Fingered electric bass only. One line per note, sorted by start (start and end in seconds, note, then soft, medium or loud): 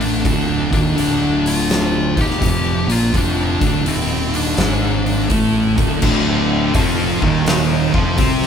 0.00 0.21 A1 loud
0.25 0.69 D1 medium
0.73 0.96 D#1 loud
0.98 2.13 D1 medium
2.17 2.40 D#1 medium
2.42 2.86 F1 loud
2.88 3.12 A#1 loud
3.14 3.58 F1 medium
3.62 3.84 D1 medium
3.87 4.55 D#1 loud
4.58 5.27 G#1 medium
5.31 5.75 A1 medium
5.78 6.01 D1 loud
6.03 6.71 D1 medium
6.75 7.19 F1 loud
7.23 7.91 D#1 loud
7.94 8.17 F1 loud
8.19 8.47 C2 loud